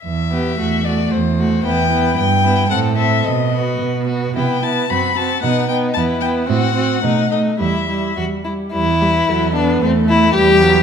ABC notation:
X:1
M:2/4
L:1/8
Q:1/4=111
K:Em
V:1 name="Violin"
e3 d | c2 g2 | g2 f e | ^d2 z2 |
g a b a | f g a g | f3 ^d | e2 z2 |
B2 A2 | A2 B2 |]
V:2 name="Violin"
z G F F | z F E E | z E A A | z F2 F |
E E F F | ^D D E E | F F ^D D | E E F E |
E3 D | C E G2 |]
V:3 name="Viola"
z B, A, A, | z A, B, B, | z B, C C | z B,2 B, |
B, B, C C | B, B, B, B, | C C A, A, | G, G, G, G, |
G, G, F, B, | A,2 G, F, |]
V:4 name="Cello" clef=bass
E,,2 E,,2 | E,,2 E,,2 | G,,2 A,,2 | B,,2 B,,2 |
C,2 F,,2 | B,,2 E,,2 | A,,2 B,,2 | E,,2 E,,2 |
E,,2 E,,2 | E,,2 E,,2 |]